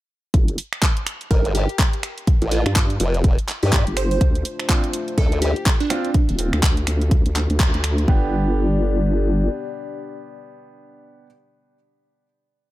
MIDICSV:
0, 0, Header, 1, 7, 480
1, 0, Start_track
1, 0, Tempo, 483871
1, 336, Time_signature, 4, 2, 24, 8
1, 12608, End_track
2, 0, Start_track
2, 0, Title_t, "Synth pluck"
2, 0, Program_c, 0, 84
2, 1296, Note_on_c, 0, 70, 95
2, 1459, Note_off_c, 0, 70, 0
2, 1535, Note_on_c, 0, 67, 95
2, 1698, Note_off_c, 0, 67, 0
2, 2497, Note_on_c, 0, 65, 91
2, 2659, Note_off_c, 0, 65, 0
2, 3600, Note_on_c, 0, 67, 93
2, 3726, Note_off_c, 0, 67, 0
2, 3937, Note_on_c, 0, 72, 86
2, 4028, Note_off_c, 0, 72, 0
2, 4080, Note_on_c, 0, 72, 79
2, 4141, Note_off_c, 0, 72, 0
2, 5136, Note_on_c, 0, 69, 97
2, 5299, Note_off_c, 0, 69, 0
2, 5377, Note_on_c, 0, 67, 97
2, 5539, Note_off_c, 0, 67, 0
2, 5759, Note_on_c, 0, 62, 96
2, 6096, Note_off_c, 0, 62, 0
2, 12608, End_track
3, 0, Start_track
3, 0, Title_t, "Analog synth pad"
3, 0, Program_c, 1, 89
3, 4175, Note_on_c, 1, 57, 81
3, 4175, Note_on_c, 1, 62, 73
3, 4175, Note_on_c, 1, 65, 75
3, 4175, Note_on_c, 1, 72, 89
3, 6076, Note_off_c, 1, 57, 0
3, 6076, Note_off_c, 1, 62, 0
3, 6076, Note_off_c, 1, 65, 0
3, 6076, Note_off_c, 1, 72, 0
3, 8013, Note_on_c, 1, 59, 79
3, 8013, Note_on_c, 1, 62, 73
3, 8013, Note_on_c, 1, 67, 77
3, 8013, Note_on_c, 1, 74, 90
3, 11169, Note_off_c, 1, 62, 0
3, 11170, Note_off_c, 1, 59, 0
3, 11170, Note_off_c, 1, 67, 0
3, 11170, Note_off_c, 1, 74, 0
3, 12608, End_track
4, 0, Start_track
4, 0, Title_t, "Grand piano"
4, 0, Program_c, 2, 0
4, 4656, Note_on_c, 2, 60, 88
4, 4656, Note_on_c, 2, 62, 80
4, 4656, Note_on_c, 2, 65, 96
4, 4778, Note_off_c, 2, 60, 0
4, 4778, Note_off_c, 2, 62, 0
4, 4778, Note_off_c, 2, 65, 0
4, 5856, Note_on_c, 2, 60, 91
4, 5856, Note_on_c, 2, 65, 103
4, 5857, Note_on_c, 2, 62, 78
4, 6034, Note_off_c, 2, 60, 0
4, 6034, Note_off_c, 2, 62, 0
4, 6034, Note_off_c, 2, 65, 0
4, 8016, Note_on_c, 2, 59, 85
4, 8016, Note_on_c, 2, 62, 77
4, 8016, Note_on_c, 2, 67, 93
4, 11172, Note_off_c, 2, 59, 0
4, 11172, Note_off_c, 2, 62, 0
4, 11172, Note_off_c, 2, 67, 0
4, 12608, End_track
5, 0, Start_track
5, 0, Title_t, "Wobble bass"
5, 0, Program_c, 3, 39
5, 337, Note_on_c, 3, 31, 95
5, 561, Note_off_c, 3, 31, 0
5, 2639, Note_on_c, 3, 43, 96
5, 2961, Note_off_c, 3, 43, 0
5, 3839, Note_on_c, 3, 31, 95
5, 4161, Note_off_c, 3, 31, 0
5, 4176, Note_on_c, 3, 38, 96
5, 4400, Note_off_c, 3, 38, 0
5, 6239, Note_on_c, 3, 27, 95
5, 6456, Note_off_c, 3, 27, 0
5, 6480, Note_on_c, 3, 38, 99
5, 6801, Note_off_c, 3, 38, 0
5, 6817, Note_on_c, 3, 38, 98
5, 7176, Note_off_c, 3, 38, 0
5, 7199, Note_on_c, 3, 38, 93
5, 7416, Note_off_c, 3, 38, 0
5, 7439, Note_on_c, 3, 38, 92
5, 7656, Note_off_c, 3, 38, 0
5, 7679, Note_on_c, 3, 38, 95
5, 8001, Note_off_c, 3, 38, 0
5, 8016, Note_on_c, 3, 31, 101
5, 9416, Note_off_c, 3, 31, 0
5, 12608, End_track
6, 0, Start_track
6, 0, Title_t, "Wobble bass"
6, 0, Program_c, 4, 39
6, 1297, Note_on_c, 4, 31, 89
6, 1656, Note_off_c, 4, 31, 0
6, 2400, Note_on_c, 4, 33, 99
6, 2616, Note_off_c, 4, 33, 0
6, 2976, Note_on_c, 4, 29, 101
6, 3336, Note_off_c, 4, 29, 0
6, 3599, Note_on_c, 4, 43, 96
6, 3816, Note_off_c, 4, 43, 0
6, 5135, Note_on_c, 4, 38, 93
6, 5496, Note_off_c, 4, 38, 0
6, 12608, End_track
7, 0, Start_track
7, 0, Title_t, "Drums"
7, 336, Note_on_c, 9, 36, 110
7, 336, Note_on_c, 9, 42, 83
7, 435, Note_off_c, 9, 42, 0
7, 436, Note_off_c, 9, 36, 0
7, 479, Note_on_c, 9, 42, 56
7, 576, Note_on_c, 9, 46, 110
7, 578, Note_off_c, 9, 42, 0
7, 675, Note_off_c, 9, 46, 0
7, 720, Note_on_c, 9, 26, 69
7, 720, Note_on_c, 9, 42, 39
7, 817, Note_off_c, 9, 42, 0
7, 817, Note_on_c, 9, 36, 104
7, 817, Note_on_c, 9, 42, 85
7, 819, Note_off_c, 9, 26, 0
7, 820, Note_on_c, 9, 39, 127
7, 916, Note_off_c, 9, 36, 0
7, 916, Note_off_c, 9, 42, 0
7, 919, Note_off_c, 9, 39, 0
7, 960, Note_on_c, 9, 42, 54
7, 1057, Note_on_c, 9, 26, 84
7, 1057, Note_on_c, 9, 46, 108
7, 1059, Note_off_c, 9, 42, 0
7, 1156, Note_off_c, 9, 26, 0
7, 1156, Note_off_c, 9, 46, 0
7, 1200, Note_on_c, 9, 42, 38
7, 1297, Note_off_c, 9, 42, 0
7, 1297, Note_on_c, 9, 36, 116
7, 1297, Note_on_c, 9, 42, 84
7, 1396, Note_off_c, 9, 36, 0
7, 1396, Note_off_c, 9, 42, 0
7, 1439, Note_on_c, 9, 42, 54
7, 1536, Note_on_c, 9, 46, 104
7, 1538, Note_off_c, 9, 42, 0
7, 1635, Note_off_c, 9, 46, 0
7, 1679, Note_on_c, 9, 42, 38
7, 1776, Note_off_c, 9, 42, 0
7, 1776, Note_on_c, 9, 36, 103
7, 1776, Note_on_c, 9, 42, 87
7, 1780, Note_on_c, 9, 39, 127
7, 1875, Note_off_c, 9, 42, 0
7, 1876, Note_off_c, 9, 36, 0
7, 1879, Note_off_c, 9, 39, 0
7, 1918, Note_on_c, 9, 42, 54
7, 2016, Note_on_c, 9, 26, 79
7, 2016, Note_on_c, 9, 46, 102
7, 2017, Note_off_c, 9, 42, 0
7, 2115, Note_off_c, 9, 26, 0
7, 2115, Note_off_c, 9, 46, 0
7, 2159, Note_on_c, 9, 42, 38
7, 2256, Note_off_c, 9, 42, 0
7, 2256, Note_on_c, 9, 36, 117
7, 2256, Note_on_c, 9, 42, 77
7, 2355, Note_off_c, 9, 42, 0
7, 2356, Note_off_c, 9, 36, 0
7, 2398, Note_on_c, 9, 42, 53
7, 2495, Note_on_c, 9, 46, 114
7, 2497, Note_off_c, 9, 42, 0
7, 2594, Note_off_c, 9, 46, 0
7, 2638, Note_on_c, 9, 26, 65
7, 2638, Note_on_c, 9, 42, 39
7, 2735, Note_off_c, 9, 42, 0
7, 2735, Note_on_c, 9, 42, 84
7, 2736, Note_on_c, 9, 36, 108
7, 2737, Note_off_c, 9, 26, 0
7, 2739, Note_on_c, 9, 39, 127
7, 2834, Note_off_c, 9, 42, 0
7, 2835, Note_off_c, 9, 36, 0
7, 2838, Note_off_c, 9, 39, 0
7, 2878, Note_on_c, 9, 42, 52
7, 2975, Note_on_c, 9, 46, 109
7, 2977, Note_off_c, 9, 42, 0
7, 3074, Note_off_c, 9, 46, 0
7, 3118, Note_on_c, 9, 42, 38
7, 3215, Note_off_c, 9, 42, 0
7, 3215, Note_on_c, 9, 42, 80
7, 3216, Note_on_c, 9, 36, 123
7, 3314, Note_off_c, 9, 42, 0
7, 3315, Note_off_c, 9, 36, 0
7, 3358, Note_on_c, 9, 42, 55
7, 3455, Note_on_c, 9, 46, 106
7, 3457, Note_off_c, 9, 42, 0
7, 3459, Note_on_c, 9, 39, 65
7, 3554, Note_off_c, 9, 46, 0
7, 3558, Note_off_c, 9, 39, 0
7, 3598, Note_on_c, 9, 42, 37
7, 3695, Note_off_c, 9, 42, 0
7, 3695, Note_on_c, 9, 42, 87
7, 3696, Note_on_c, 9, 36, 109
7, 3699, Note_on_c, 9, 39, 127
7, 3794, Note_off_c, 9, 42, 0
7, 3795, Note_off_c, 9, 36, 0
7, 3798, Note_off_c, 9, 39, 0
7, 3839, Note_on_c, 9, 42, 52
7, 3935, Note_on_c, 9, 26, 77
7, 3935, Note_on_c, 9, 46, 110
7, 3938, Note_off_c, 9, 42, 0
7, 4035, Note_off_c, 9, 26, 0
7, 4035, Note_off_c, 9, 46, 0
7, 4079, Note_on_c, 9, 42, 38
7, 4176, Note_off_c, 9, 42, 0
7, 4176, Note_on_c, 9, 36, 117
7, 4176, Note_on_c, 9, 42, 77
7, 4275, Note_off_c, 9, 36, 0
7, 4275, Note_off_c, 9, 42, 0
7, 4319, Note_on_c, 9, 42, 51
7, 4415, Note_on_c, 9, 46, 117
7, 4418, Note_off_c, 9, 42, 0
7, 4515, Note_off_c, 9, 46, 0
7, 4558, Note_on_c, 9, 26, 66
7, 4558, Note_on_c, 9, 42, 36
7, 4656, Note_off_c, 9, 42, 0
7, 4656, Note_on_c, 9, 36, 110
7, 4656, Note_on_c, 9, 42, 81
7, 4658, Note_off_c, 9, 26, 0
7, 4659, Note_on_c, 9, 39, 123
7, 4755, Note_off_c, 9, 36, 0
7, 4755, Note_off_c, 9, 42, 0
7, 4759, Note_off_c, 9, 39, 0
7, 4799, Note_on_c, 9, 42, 53
7, 4895, Note_on_c, 9, 46, 112
7, 4898, Note_off_c, 9, 42, 0
7, 4995, Note_off_c, 9, 46, 0
7, 5038, Note_on_c, 9, 42, 36
7, 5135, Note_off_c, 9, 42, 0
7, 5135, Note_on_c, 9, 42, 80
7, 5136, Note_on_c, 9, 36, 127
7, 5235, Note_off_c, 9, 36, 0
7, 5235, Note_off_c, 9, 42, 0
7, 5278, Note_on_c, 9, 42, 51
7, 5375, Note_on_c, 9, 46, 115
7, 5378, Note_off_c, 9, 42, 0
7, 5474, Note_off_c, 9, 46, 0
7, 5518, Note_on_c, 9, 42, 37
7, 5614, Note_off_c, 9, 42, 0
7, 5614, Note_on_c, 9, 42, 81
7, 5616, Note_on_c, 9, 36, 112
7, 5618, Note_on_c, 9, 39, 127
7, 5714, Note_off_c, 9, 42, 0
7, 5715, Note_off_c, 9, 36, 0
7, 5717, Note_off_c, 9, 39, 0
7, 5758, Note_on_c, 9, 42, 53
7, 5855, Note_on_c, 9, 26, 76
7, 5855, Note_on_c, 9, 46, 110
7, 5857, Note_off_c, 9, 42, 0
7, 5954, Note_off_c, 9, 26, 0
7, 5954, Note_off_c, 9, 46, 0
7, 5997, Note_on_c, 9, 42, 36
7, 6094, Note_off_c, 9, 42, 0
7, 6094, Note_on_c, 9, 42, 73
7, 6096, Note_on_c, 9, 36, 115
7, 6194, Note_off_c, 9, 42, 0
7, 6195, Note_off_c, 9, 36, 0
7, 6237, Note_on_c, 9, 42, 49
7, 6335, Note_on_c, 9, 46, 117
7, 6337, Note_off_c, 9, 42, 0
7, 6434, Note_off_c, 9, 46, 0
7, 6478, Note_on_c, 9, 26, 66
7, 6478, Note_on_c, 9, 42, 37
7, 6576, Note_off_c, 9, 42, 0
7, 6576, Note_on_c, 9, 36, 110
7, 6576, Note_on_c, 9, 42, 81
7, 6577, Note_off_c, 9, 26, 0
7, 6579, Note_on_c, 9, 39, 127
7, 6675, Note_off_c, 9, 36, 0
7, 6675, Note_off_c, 9, 42, 0
7, 6679, Note_off_c, 9, 39, 0
7, 6718, Note_on_c, 9, 42, 51
7, 6815, Note_on_c, 9, 26, 83
7, 6815, Note_on_c, 9, 46, 106
7, 6817, Note_off_c, 9, 42, 0
7, 6914, Note_off_c, 9, 26, 0
7, 6914, Note_off_c, 9, 46, 0
7, 6959, Note_on_c, 9, 42, 38
7, 7056, Note_off_c, 9, 42, 0
7, 7056, Note_on_c, 9, 36, 121
7, 7056, Note_on_c, 9, 42, 78
7, 7155, Note_off_c, 9, 36, 0
7, 7155, Note_off_c, 9, 42, 0
7, 7199, Note_on_c, 9, 42, 53
7, 7296, Note_on_c, 9, 46, 111
7, 7298, Note_off_c, 9, 42, 0
7, 7300, Note_on_c, 9, 39, 62
7, 7395, Note_off_c, 9, 46, 0
7, 7399, Note_off_c, 9, 39, 0
7, 7439, Note_on_c, 9, 42, 37
7, 7536, Note_off_c, 9, 42, 0
7, 7536, Note_on_c, 9, 36, 112
7, 7536, Note_on_c, 9, 42, 83
7, 7539, Note_on_c, 9, 39, 123
7, 7635, Note_off_c, 9, 36, 0
7, 7635, Note_off_c, 9, 42, 0
7, 7638, Note_off_c, 9, 39, 0
7, 7679, Note_on_c, 9, 42, 48
7, 7775, Note_on_c, 9, 26, 76
7, 7775, Note_on_c, 9, 46, 110
7, 7778, Note_off_c, 9, 42, 0
7, 7875, Note_off_c, 9, 26, 0
7, 7875, Note_off_c, 9, 46, 0
7, 7918, Note_on_c, 9, 42, 34
7, 8016, Note_on_c, 9, 36, 109
7, 8018, Note_off_c, 9, 42, 0
7, 8115, Note_off_c, 9, 36, 0
7, 12608, End_track
0, 0, End_of_file